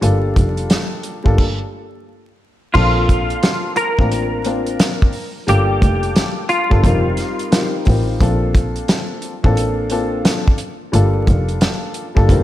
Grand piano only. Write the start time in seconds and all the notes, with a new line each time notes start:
0.01 G3 A#3 D4 F4 A4
1.24 G3 A#3 D4 F4 A4
2.74 A#3 C4 D4 F4 A4
3.98 A#3 C4 D4 F4 A#4
4.45 A#3 C4 D4 F4 A#4
5.47 G3 A#3 D4 F4 A4
6.70 G3 A#3 D4 F4 A4
6.83 G3 C4 D#4 F4 A#4
7.51 G3 C4 D#4 F4 A#4
7.85 G3 C4 D#4 F4 A#4
8.20 A#3 C4 D4 F4 A4
9.43 A#3 C4 D4 F4 A4
9.90 A#3 C4 D4 F4 A4
10.92 G3 A#3 D4 F4 A4
12.15 G3 A#3 D4 F4 A4
12.28 G3 C4 D#4 F4 A#4